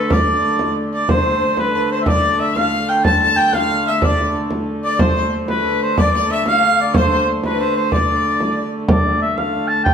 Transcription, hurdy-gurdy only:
0, 0, Header, 1, 2, 480
1, 0, Start_track
1, 0, Tempo, 325027
1, 151, Time_signature, 6, 3, 24, 8
1, 14678, End_track
2, 0, Start_track
2, 0, Title_t, "Hurdy-gurdy"
2, 0, Program_c, 0, 110
2, 0, Note_on_c, 0, 50, 63
2, 0, Note_on_c, 0, 57, 68
2, 1605, Note_off_c, 0, 50, 0
2, 1605, Note_on_c, 0, 50, 70
2, 1610, Note_off_c, 0, 57, 0
2, 1610, Note_on_c, 0, 57, 66
2, 7380, Note_off_c, 0, 50, 0
2, 7380, Note_on_c, 0, 50, 67
2, 7384, Note_off_c, 0, 57, 0
2, 7384, Note_on_c, 0, 57, 67
2, 13127, Note_off_c, 0, 57, 0
2, 13127, Note_on_c, 0, 57, 67
2, 13129, Note_off_c, 0, 50, 0
2, 13129, Note_on_c, 0, 50, 63
2, 14678, Note_off_c, 0, 50, 0
2, 14678, Note_off_c, 0, 57, 0
2, 14678, End_track
0, 0, End_of_file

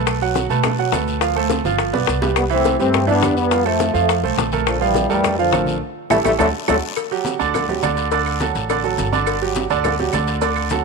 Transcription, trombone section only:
0, 0, Header, 1, 2, 480
1, 0, Start_track
1, 0, Key_signature, 1, "major"
1, 0, Tempo, 287632
1, 112, Time_signature, 4, 2, 24, 8
1, 18096, End_track
2, 0, Start_track
2, 0, Title_t, "Trombone section"
2, 0, Program_c, 0, 61
2, 3971, Note_on_c, 0, 59, 90
2, 3977, Note_on_c, 0, 55, 66
2, 4075, Note_off_c, 0, 59, 0
2, 4080, Note_off_c, 0, 55, 0
2, 4215, Note_on_c, 0, 60, 98
2, 4232, Note_on_c, 0, 57, 73
2, 4651, Note_off_c, 0, 60, 0
2, 4661, Note_off_c, 0, 57, 0
2, 4679, Note_on_c, 0, 60, 102
2, 4710, Note_on_c, 0, 57, 81
2, 5123, Note_off_c, 0, 60, 0
2, 5139, Note_off_c, 0, 57, 0
2, 5139, Note_on_c, 0, 62, 104
2, 5171, Note_on_c, 0, 59, 84
2, 5592, Note_off_c, 0, 62, 0
2, 5609, Note_off_c, 0, 59, 0
2, 5632, Note_on_c, 0, 59, 103
2, 5673, Note_on_c, 0, 55, 76
2, 6079, Note_off_c, 0, 59, 0
2, 6091, Note_on_c, 0, 57, 89
2, 6101, Note_off_c, 0, 55, 0
2, 6122, Note_on_c, 0, 53, 71
2, 6566, Note_off_c, 0, 57, 0
2, 6586, Note_on_c, 0, 57, 80
2, 6594, Note_off_c, 0, 53, 0
2, 6614, Note_on_c, 0, 53, 60
2, 7035, Note_off_c, 0, 57, 0
2, 7050, Note_off_c, 0, 53, 0
2, 7799, Note_on_c, 0, 50, 68
2, 7800, Note_on_c, 0, 53, 84
2, 8019, Note_off_c, 0, 50, 0
2, 8020, Note_off_c, 0, 53, 0
2, 8038, Note_on_c, 0, 55, 98
2, 8058, Note_on_c, 0, 52, 77
2, 8506, Note_off_c, 0, 55, 0
2, 8521, Note_off_c, 0, 52, 0
2, 8526, Note_on_c, 0, 55, 94
2, 8541, Note_on_c, 0, 52, 78
2, 8966, Note_off_c, 0, 55, 0
2, 8974, Note_off_c, 0, 52, 0
2, 8994, Note_on_c, 0, 53, 94
2, 9000, Note_on_c, 0, 50, 70
2, 9662, Note_off_c, 0, 53, 0
2, 9665, Note_off_c, 0, 50, 0
2, 10187, Note_on_c, 0, 55, 96
2, 10197, Note_on_c, 0, 57, 95
2, 10199, Note_on_c, 0, 52, 90
2, 10303, Note_off_c, 0, 55, 0
2, 10311, Note_off_c, 0, 57, 0
2, 10312, Note_off_c, 0, 52, 0
2, 10430, Note_on_c, 0, 55, 95
2, 10437, Note_on_c, 0, 57, 96
2, 10438, Note_on_c, 0, 52, 97
2, 10545, Note_off_c, 0, 55, 0
2, 10550, Note_off_c, 0, 57, 0
2, 10551, Note_off_c, 0, 52, 0
2, 10684, Note_on_c, 0, 50, 102
2, 10685, Note_on_c, 0, 57, 101
2, 10687, Note_on_c, 0, 54, 97
2, 10795, Note_off_c, 0, 50, 0
2, 10796, Note_off_c, 0, 57, 0
2, 10797, Note_off_c, 0, 54, 0
2, 11164, Note_on_c, 0, 50, 88
2, 11168, Note_on_c, 0, 54, 91
2, 11176, Note_on_c, 0, 57, 93
2, 11275, Note_off_c, 0, 50, 0
2, 11278, Note_off_c, 0, 54, 0
2, 11283, Note_off_c, 0, 57, 0
2, 18096, End_track
0, 0, End_of_file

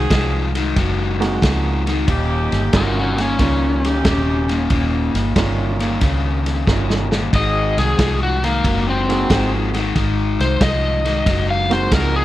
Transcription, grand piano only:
0, 0, Header, 1, 2, 480
1, 0, Start_track
1, 0, Tempo, 655738
1, 1522, Time_signature, 4, 2, 24, 8
1, 8966, End_track
2, 0, Start_track
2, 0, Title_t, "Grand piano"
2, 0, Program_c, 0, 0
2, 880, Note_on_c, 0, 56, 75
2, 881, Note_on_c, 0, 58, 68
2, 883, Note_on_c, 0, 63, 66
2, 883, Note_on_c, 0, 66, 84
2, 884, Note_on_c, 0, 60, 70
2, 1488, Note_off_c, 0, 56, 0
2, 1489, Note_off_c, 0, 58, 0
2, 1490, Note_off_c, 0, 60, 0
2, 1490, Note_off_c, 0, 63, 0
2, 1490, Note_off_c, 0, 66, 0
2, 1997, Note_on_c, 0, 58, 60
2, 1998, Note_on_c, 0, 55, 66
2, 2001, Note_on_c, 0, 63, 61
2, 2003, Note_on_c, 0, 61, 62
2, 2003, Note_on_c, 0, 65, 70
2, 2465, Note_off_c, 0, 58, 0
2, 2466, Note_off_c, 0, 55, 0
2, 2467, Note_off_c, 0, 63, 0
2, 2468, Note_off_c, 0, 61, 0
2, 2469, Note_off_c, 0, 65, 0
2, 2482, Note_on_c, 0, 61, 62
2, 2483, Note_on_c, 0, 55, 65
2, 2486, Note_on_c, 0, 58, 65
2, 2487, Note_on_c, 0, 63, 62
2, 2490, Note_on_c, 0, 65, 73
2, 2776, Note_off_c, 0, 61, 0
2, 2777, Note_off_c, 0, 55, 0
2, 2778, Note_off_c, 0, 58, 0
2, 2779, Note_off_c, 0, 63, 0
2, 2781, Note_off_c, 0, 65, 0
2, 3921, Note_on_c, 0, 55, 65
2, 3927, Note_on_c, 0, 58, 66
2, 3928, Note_on_c, 0, 65, 76
2, 3930, Note_on_c, 0, 61, 61
2, 3930, Note_on_c, 0, 63, 60
2, 4664, Note_off_c, 0, 55, 0
2, 4667, Note_off_c, 0, 58, 0
2, 4668, Note_off_c, 0, 61, 0
2, 4668, Note_off_c, 0, 63, 0
2, 4668, Note_off_c, 0, 65, 0
2, 4889, Note_on_c, 0, 58, 53
2, 4891, Note_on_c, 0, 55, 54
2, 4892, Note_on_c, 0, 61, 55
2, 4892, Note_on_c, 0, 65, 57
2, 4894, Note_on_c, 0, 63, 51
2, 5180, Note_off_c, 0, 58, 0
2, 5181, Note_off_c, 0, 55, 0
2, 5182, Note_off_c, 0, 61, 0
2, 5182, Note_off_c, 0, 63, 0
2, 5182, Note_off_c, 0, 65, 0
2, 6655, Note_on_c, 0, 58, 62
2, 6656, Note_on_c, 0, 56, 69
2, 6659, Note_on_c, 0, 60, 62
2, 6659, Note_on_c, 0, 63, 63
2, 6662, Note_on_c, 0, 66, 77
2, 7254, Note_off_c, 0, 58, 0
2, 7255, Note_off_c, 0, 56, 0
2, 7256, Note_off_c, 0, 60, 0
2, 7256, Note_off_c, 0, 63, 0
2, 7258, Note_off_c, 0, 66, 0
2, 8565, Note_on_c, 0, 58, 68
2, 8568, Note_on_c, 0, 56, 74
2, 8569, Note_on_c, 0, 60, 71
2, 8569, Note_on_c, 0, 66, 85
2, 8570, Note_on_c, 0, 63, 69
2, 8966, Note_off_c, 0, 56, 0
2, 8966, Note_off_c, 0, 58, 0
2, 8966, Note_off_c, 0, 60, 0
2, 8966, Note_off_c, 0, 63, 0
2, 8966, Note_off_c, 0, 66, 0
2, 8966, End_track
0, 0, End_of_file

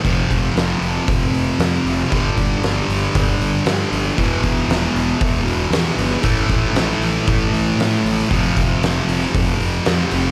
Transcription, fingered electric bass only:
0, 0, Header, 1, 2, 480
1, 0, Start_track
1, 0, Tempo, 516351
1, 33, Time_signature, 4, 2, 24, 8
1, 9585, End_track
2, 0, Start_track
2, 0, Title_t, "Fingered electric bass"
2, 0, Program_c, 0, 33
2, 39, Note_on_c, 0, 29, 89
2, 203, Note_off_c, 0, 29, 0
2, 282, Note_on_c, 0, 29, 86
2, 446, Note_off_c, 0, 29, 0
2, 508, Note_on_c, 0, 29, 86
2, 676, Note_off_c, 0, 29, 0
2, 749, Note_on_c, 0, 29, 73
2, 918, Note_off_c, 0, 29, 0
2, 1002, Note_on_c, 0, 29, 86
2, 1166, Note_off_c, 0, 29, 0
2, 1221, Note_on_c, 0, 29, 74
2, 1392, Note_off_c, 0, 29, 0
2, 1475, Note_on_c, 0, 41, 90
2, 1642, Note_off_c, 0, 41, 0
2, 1709, Note_on_c, 0, 29, 84
2, 1878, Note_off_c, 0, 29, 0
2, 1969, Note_on_c, 0, 31, 91
2, 2131, Note_off_c, 0, 31, 0
2, 2203, Note_on_c, 0, 31, 81
2, 2368, Note_off_c, 0, 31, 0
2, 2437, Note_on_c, 0, 31, 82
2, 2604, Note_off_c, 0, 31, 0
2, 2674, Note_on_c, 0, 31, 68
2, 2842, Note_off_c, 0, 31, 0
2, 2925, Note_on_c, 0, 31, 89
2, 3089, Note_off_c, 0, 31, 0
2, 3162, Note_on_c, 0, 31, 82
2, 3327, Note_off_c, 0, 31, 0
2, 3394, Note_on_c, 0, 43, 92
2, 3562, Note_off_c, 0, 43, 0
2, 3640, Note_on_c, 0, 31, 78
2, 3806, Note_off_c, 0, 31, 0
2, 3886, Note_on_c, 0, 28, 81
2, 4050, Note_off_c, 0, 28, 0
2, 4117, Note_on_c, 0, 28, 78
2, 4284, Note_off_c, 0, 28, 0
2, 4350, Note_on_c, 0, 28, 91
2, 4520, Note_off_c, 0, 28, 0
2, 4594, Note_on_c, 0, 28, 77
2, 4762, Note_off_c, 0, 28, 0
2, 4840, Note_on_c, 0, 28, 88
2, 5006, Note_off_c, 0, 28, 0
2, 5070, Note_on_c, 0, 28, 82
2, 5240, Note_off_c, 0, 28, 0
2, 5303, Note_on_c, 0, 40, 88
2, 5475, Note_off_c, 0, 40, 0
2, 5547, Note_on_c, 0, 31, 84
2, 5718, Note_off_c, 0, 31, 0
2, 5796, Note_on_c, 0, 33, 88
2, 5963, Note_off_c, 0, 33, 0
2, 6034, Note_on_c, 0, 33, 86
2, 6202, Note_off_c, 0, 33, 0
2, 6255, Note_on_c, 0, 33, 87
2, 6430, Note_off_c, 0, 33, 0
2, 6500, Note_on_c, 0, 33, 83
2, 6672, Note_off_c, 0, 33, 0
2, 6762, Note_on_c, 0, 33, 84
2, 6927, Note_off_c, 0, 33, 0
2, 6992, Note_on_c, 0, 33, 75
2, 7160, Note_off_c, 0, 33, 0
2, 7232, Note_on_c, 0, 45, 95
2, 7400, Note_off_c, 0, 45, 0
2, 7474, Note_on_c, 0, 33, 84
2, 7641, Note_off_c, 0, 33, 0
2, 7720, Note_on_c, 0, 29, 97
2, 7885, Note_off_c, 0, 29, 0
2, 7966, Note_on_c, 0, 29, 86
2, 8128, Note_off_c, 0, 29, 0
2, 8193, Note_on_c, 0, 29, 82
2, 8360, Note_off_c, 0, 29, 0
2, 8433, Note_on_c, 0, 29, 89
2, 8599, Note_off_c, 0, 29, 0
2, 8682, Note_on_c, 0, 29, 88
2, 8845, Note_off_c, 0, 29, 0
2, 8916, Note_on_c, 0, 29, 78
2, 9081, Note_off_c, 0, 29, 0
2, 9170, Note_on_c, 0, 41, 88
2, 9330, Note_off_c, 0, 41, 0
2, 9407, Note_on_c, 0, 29, 93
2, 9568, Note_off_c, 0, 29, 0
2, 9585, End_track
0, 0, End_of_file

